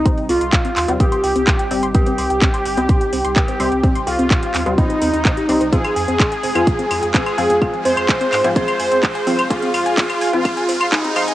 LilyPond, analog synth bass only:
\new Staff \with { instrumentName = "Analog synth bass" } { \clef bass \time 4/4 \key c \minor \tempo 4 = 127 r8 c,16 c,16 r8 ees,16 ees,16 r8 c,16 c,16 r8 g,,16 g,,16 | r8 c,16 c,16 r8 g,,16 c,16 r8 c,16 c,16 r8 c,16 c,16 | r8 c,16 c,16 r8 ees,16 ees,16 r8 ees,16 ees,16 r8 c,16 c,16 | r8 f,16 f,16 r8 f,,16 f,16 r8 f,16 f,16 r8 f,16 f,16 |
r8 f,16 f,16 r8 aes,16 aes,16 r8 f,16 f,16 r8 c,16 c,16 | r8 f,16 f,16 r8 f,,16 f,16 r8 f,16 f,16 r8 f,16 f,16 | }